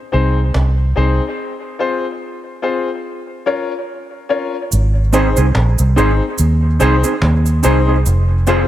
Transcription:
0.12 fingered electric bass C2, grand piano C4 D#4 G#4 C5, cajon slap
0.54 fingered electric bass C2, cajon bass, cajon slap
0.78 cajon slap
0.96 fingered electric bass C2, grand piano C4 D#4 G#4 C5, cajon slap
1.79 grand piano C4 F4 G#4 C5
2.62 grand piano C4 F4 G#4 C5
3.46 grand piano C#4 F4 A#4 C#5
4.29 grand piano C#4 F4 A#4 C#5
4.71 fingered electric bass G#1, cajon slap, cabasa
4.95 cajon slap
5.13 clean electric guitar C4 D#4 G#4 C5, grand piano C4 D#4 G#4 C5, cajon slap, cabasa
5.37 fingered electric bass C2, clean electric guitar C4 D#4 G#4 C5, cabasa
5.55 fingered electric bass A#1, cajon bass, cajon slap
5.78 fingered electric bass C2, cajon slap, cabasa
5.96 fingered electric bass G#1, grand piano C4 D#4 G#4 C5, clean electric guitar C4 D#4 G#4 C5, cajon slap, cabasa
6.21 cajon slap
6.38 fingered electric bass D#2, cajon slap, cabasa
6.62 cajon slap
6.79 fingered electric bass C2, clean electric guitar C4 D#4 G#4 C5, grand piano C4 D#4 G#4 C5, cajon slap, cabasa
7.03 clean electric guitar C4 D#4 G#4 C5, grand piano G#4 C5, cabasa
7.22 fingered electric bass D#2, cajon bass, cajon slap
7.45 cajon slap, cabasa
7.63 fingered electric bass C2, clean electric guitar C4 D#4 G#4 C5, grand piano C4 D#4 G#4 C5, cajon slap, cabasa
7.87 clean electric guitar C4 D#4 G#4 C5
8.05 fingered electric bass F1, cajon slap, cabasa
8.29 cajon slap
8.47 grand piano C4 F4 G#4 C5, clean electric guitar C4 F4 G#4 C5, cajon slap, cabasa

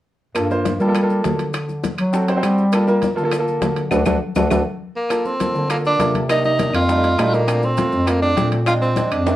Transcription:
0.34 bass clarinet G2, grand piano A#3 F4 A4, high bongo, high conga, high timbale, claves, maracas
0.50 grand piano A#3 F4 C5, high bongo, high conga, maracas
0.65 high bongo, high conga, high timbale, maracas
0.79 bass clarinet G3, grand piano A#3 F4 A4, high bongo, high conga, maracas
0.87 grand piano A#3 F4 A4
0.95 high bongo, high conga, high timbale, claves, maracas
1.02 grand piano A#3 F4 A4
1.10 high conga, maracas
1.24 bass clarinet D3, high bongo, low bongo, high conga, high timbale, low timbale, maracas
1.39 high bongo, high timbale, maracas
1.54 high bongo, high conga, high timbale, claves, maracas
1.69 high bongo, high conga, maracas
1.84 high bongo, high conga, high timbale, maracas
1.98 bass clarinet F#3, high conga, high timbale, claves, maracas
2.13 grand piano C4 F#4 A4, high bongo, high conga, maracas
2.28 grand piano C4 F#4 C5, high bongo, high conga, high timbale, maracas
2.36 grand piano C4 F#4 C5
2.43 bass clarinet G3, high bongo, low bongo, high conga, high timbale, claves, maracas
2.58 high bongo, high conga, maracas
2.72 grand piano A#3 F4 A4, high bongo, high conga, high timbale, claves, maracas
2.87 grand piano A#3 F4 A#4, high bongo, high conga, maracas
3.02 high bongo, high conga, high timbale, maracas
3.16 bass clarinet D3, grand piano A#3 F4 A4, high bongo, high conga, maracas
3.24 grand piano A#3 F4 A4
3.32 high bongo, high conga, high timbale, claves, maracas
3.38 grand piano A#3 F4 A4
3.48 high conga, maracas
3.62 bass clarinet D3, high bongo, low bongo, high conga, high timbale, low timbale, maracas
3.77 high bongo, high timbale, maracas
3.91 bass clarinet D2, grand piano D4 F#4 A4, low bongo, high conga, high timbale, claves, maracas
4.06 bass clarinet D2, grand piano D4 F#4 A4, low bongo, high conga, high timbale, claves, maracas
4.35 bass clarinet D2, grand piano D4 F#4 A4, low bongo, high conga, high timbale, claves, maracas
4.50 bass clarinet D2, grand piano D4 F#4 A4, low bongo, high conga, high timbale, claves, maracas
4.96 tenor saxophone A#3
5.09 grand piano A#3 F4 A4, high bongo, high conga, high timbale, claves, maracas
5.25 tenor saxophone C4, high bongo, high conga, maracas
5.40 grand piano A#3 F4 A4, high bongo, high conga, high timbale, maracas
5.54 bass clarinet D3, high bongo, high conga, maracas
5.69 grand piano A#3 F4 A4, tenor saxophone A#3, high bongo, high conga, high timbale, claves, maracas
5.84 tenor saxophone D4, high conga, maracas
5.99 bass clarinet C3, grand piano A#3 F4 A4, high bongo, low bongo, high conga, high timbale, maracas
6.14 high bongo, high conga, high timbale, maracas
6.29 grand piano A#3 D4 D#4, tenor saxophone D#4, high bongo, high conga, high timbale, claves, maracas
6.44 tenor saxophone D#4, high bongo, high conga, maracas
6.59 grand piano A#3 D4 D#4, high bongo, high conga, high timbale, maracas
6.73 bass clarinet F2, tenor saxophone F4, high conga, high timbale, claves, maracas
6.89 grand piano G3 A3 D4 D#4, high bongo, high conga, maracas
7.04 high bongo, high conga, high timbale, maracas
7.18 bass clarinet A#2, grand piano G3 A3 D4 D#4, high bongo, low bongo, high conga, high timbale, low timbale, claves, maracas
7.34 tenor saxophone A#3, high bongo, high conga, maracas
7.47 grand piano A3 C4 D4, high bongo, high conga, high timbale, claves, maracas
7.63 tenor saxophone C4, high bongo, high conga, maracas
7.77 grand piano A3 C4 F4, high bongo, high conga, high timbale, maracas
7.92 bass clarinet F2, high bongo, high conga, maracas
8.06 grand piano A3 C4 F4, tenor saxophone A#3, high bongo, high conga, high timbale, claves, maracas
8.23 tenor saxophone D4, high conga, maracas
8.36 bass clarinet A#2, grand piano A3 C4 D4, high bongo, low bongo, high conga, high timbale, maracas
8.52 high bongo, high timbale, maracas
8.67 grand piano G#3 C4 D4, tenor saxophone F4, high bongo, high conga, high timbale, claves, maracas
8.82 tenor saxophone C4, high bongo, high conga, maracas
8.96 grand piano G#3 C4 D4, high bongo, high conga, high timbale, maracas
9.11 bass clarinet F2, tenor saxophone D4, high conga, high timbale, claves, maracas
9.26 grand piano G#3 C4 D4, high bongo, high conga, high timbale, maracas

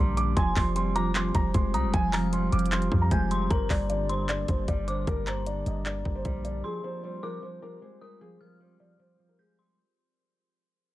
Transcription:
Already playing: 808-style bass A#1, clean electric guitar G2 D3 G3, glass harmonica A#3 D4 G4 D5, synth bell A#5, felt piano C6
0.17 clean electric guitar D3, felt piano D6, closed hi-hat
0.37 808-style bass F1, clean electric guitar F3, glass harmonica C4 F4 G4 C5, felt piano G#5, synth bell C6, kick, closed hi-hat
0.56 808-style bass F1, clean electric guitar F3, felt piano C6, kick, clap, open hi-hat
0.76 clean electric guitar G3, felt piano C6, closed hi-hat
0.95 clean electric guitar F3, felt piano A#5, synth bell D6, closed hi-hat
1.15 clean electric guitar F3, felt piano C6, clap, closed hi-hat
1.35 808-style bass F1, clean electric guitar F3, felt piano A#5, kick, closed hi-hat
1.54 808-style bass F1, clean electric guitar G#3, felt piano C6, kick, closed hi-hat
1.74 808-style bass C2, clean electric guitar G3, felt piano A#5, synth bell D#6, closed hi-hat
1.84 808-style bass F1
1.94 808-style bass F1, clean electric guitar F3, felt piano G#5, kick, closed hi-hat
2.13 clean electric guitar F3, felt piano A#5, synth bell F6, clap, open hi-hat
2.33 clean electric guitar G3, felt piano C6, closed hi-hat
2.52 808-style bass F1, clean electric guitar F3, felt piano D6, closed hi-hat
2.59 closed hi-hat
2.66 closed hi-hat
2.72 clean electric guitar F3, felt piano C6, clap, closed hi-hat
2.82 closed hi-hat
2.92 808-style bass F2, clean electric guitar F3, kick
3.02 felt piano A#5
3.11 808-style bass F1, clean electric guitar G#3, felt piano G#5, synth bell G6, kick, closed hi-hat
3.31 clean electric guitar G3, synth bell C6, closed hi-hat
3.50 808-style bass G1, clean electric guitar G2, glass harmonica A#3 D4 G4 D5, felt piano A#4, synth bell A#5, kick, closed hi-hat
3.70 808-style bass G1, clean electric guitar G2, felt piano D5, kick, clap, open hi-hat
3.90 clean electric guitar D3, felt piano D5, closed hi-hat
4.09 clean electric guitar G2, felt piano C5, synth bell C6, closed hi-hat
4.29 clean electric guitar G2, felt piano D5, clap, closed hi-hat
4.48 808-style bass G1, clean electric guitar G2, felt piano C5, kick, closed hi-hat
4.68 808-style bass G1, clean electric guitar G3, felt piano D5, kick, closed hi-hat
4.88 clean electric guitar D3, felt piano C5, synth bell D6, closed hi-hat
5.07 808-style bass G1, clean electric guitar G2, felt piano A#4, kick, closed hi-hat
5.27 clean electric guitar G2, felt piano C5, synth bell A#5, clap, closed hi-hat
5.46 clean electric guitar D3, felt piano D5, closed hi-hat
5.66 808-style bass G1, clean electric guitar G2, felt piano D#5, closed hi-hat
5.86 clean electric guitar G2, felt piano D5, clap, closed hi-hat
6.05 808-style bass G1, clean electric guitar G2, kick
6.15 felt piano C5
6.25 808-style bass A#1, clean electric guitar G3, kick, closed hi-hat
6.45 clean electric guitar D3, felt piano D5, closed hi-hat
6.64 clean electric guitar F3, glass harmonica C4 F4 C5, felt piano G#4, synth bell C6
6.84 clean electric guitar F3, felt piano C5
7.03 clean electric guitar G3, felt piano C5
7.23 clean electric guitar F3, felt piano A#4, synth bell D6
7.43 clean electric guitar F3, felt piano C5
7.62 clean electric guitar F3, felt piano A#4
7.82 clean electric guitar G#3, felt piano C5
8.01 clean electric guitar G3, felt piano A#4, synth bell D#6
8.21 clean electric guitar F3, felt piano G#4
8.41 clean electric guitar F3, felt piano A#4, synth bell F6
8.60 clean electric guitar G3, felt piano C5
8.80 clean electric guitar F3, felt piano D5
8.99 clean electric guitar F3, felt piano C5
9.19 clean electric guitar F3
9.29 felt piano A#4
9.39 clean electric guitar G#3, felt piano G#4, synth bell G6
9.58 clean electric guitar G3, synth bell C6

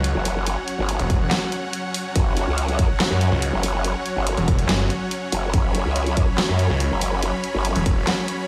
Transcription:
Already playing: detuned saw bass C#2, supersaw synth F#3 C#4 C#5 F#5, sub drop
0.04 closed hi-hat
0.15 wobble bass F#1
0.25 open hi-hat
0.47 closed hi-hat
0.68 closed hi-hat
0.78 wobble bass G1
0.89 closed hi-hat
0.99 detuned saw bass E1, closed hi-hat
1.10 kick, closed hi-hat
1.31 snare, clap, closed hi-hat
1.52 closed hi-hat
1.73 closed hi-hat
1.94 open hi-hat
2.15 wobble bass F#1, kick, closed hi-hat
2.37 closed hi-hat
2.47 wobble bass C#2
2.58 closed hi-hat
2.69 closed hi-hat
2.79 kick, closed hi-hat
3.00 snare, clap, closed hi-hat
3.11 wobble bass F#2
3.21 closed hi-hat
3.32 detuned saw bass C#2
3.42 closed hi-hat
3.53 wobble bass F#1
3.63 open hi-hat
3.84 closed hi-hat
4.06 closed hi-hat
4.16 wobble bass G1
4.27 closed hi-hat
4.37 detuned saw bass E1, closed hi-hat
4.48 kick, closed hi-hat
4.59 closed hi-hat
4.69 detuned saw bass G1, snare, clap, closed hi-hat
4.90 closed hi-hat
5.11 closed hi-hat
5.32 wobble bass F#1, open hi-hat
5.54 wobble bass F#1, supersaw synth B5, kick, closed hi-hat
5.75 closed hi-hat
5.85 wobble bass C#2
5.96 closed hi-hat
6.07 closed hi-hat
6.17 kick, closed hi-hat
6.38 snare, clap, closed hi-hat
6.49 wobble bass F#2
6.59 closed hi-hat
6.70 detuned saw bass C#2
6.80 closed hi-hat
6.91 wobble bass F#1
7.01 open hi-hat
7.23 closed hi-hat
7.44 closed hi-hat
7.54 wobble bass G1
7.65 closed hi-hat
7.76 detuned saw bass E1, closed hi-hat
7.86 kick, closed hi-hat
8.07 snare, clap, closed hi-hat
8.28 closed hi-hat

